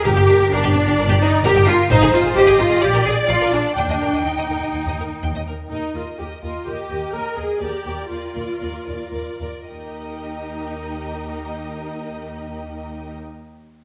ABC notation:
X:1
M:4/4
L:1/16
Q:1/4=124
K:Eb
V:1 name="Violin section"
B G D G B G D G B G D z B G D z | c A E A c A E A d B A z d B A z | g e B e g e B e g e B z g e B z | e2 e2 e2 e2 e2 e2 e2 e2 |
d2 d2 d2 d2 d2 d2 d2 d2 | e16- | e16 |]
V:2 name="Violin section"
B4 d8 B4 | c4 e4 d8 | g12- g2 z2 | B2 B2 B2 B2 B2 B2 B2 B2 |
B2 B2 B2 B2 B2 B2 B2 B2 | [GB]16- | [GB]16 |]
V:3 name="Viola section"
G4 D6 E2 G2 F2 | E2 F2 G2 F2 G2 A2 F2 D2 | D4 E8- E2 z2 | E2 F2 G2 F2 G4 B2 A2 |
G4 F8- F2 z2 | E16- | E16 |]
V:4 name="Cello section" clef=bass
G4 D6 E2 G2 F2 | E2 F2 G2 F2 G2 A2 F2 D2 | D4 E8- E2 z2 | E,,2 E,,2 E,,2 E,,2 E,,2 E,,2 E,,2 E,,2 |
E,,2 E,,2 E,,2 E,,2 E,,2 E,,2 E,,2 E,,2 | E,,16- | E,,16 |]
V:5 name="Double bass section" clef=bass
G,,, G,,, G,,, G,,, G,,, G,,, G,,, G,,, G,,, G,,, G,,, z G,,, G,,, G,,, z | A,,, A,,, A,,, A,,, A,,, A,,, A,,, A,,, B,,, B,,, B,,, z B,,, B,,, B,,, z | E,, E,, E,, E,, E,, E,, E,, E,, E,, E,, E,, z E,, E,, E,, z | E,,2 E,,2 E,,2 E,,2 E,,2 E,,2 E,,2 E,,2 |
E,,2 E,,2 E,,2 E,,2 E,,2 E,,2 E,,2 E,,2 | E,,16- | E,,16 |]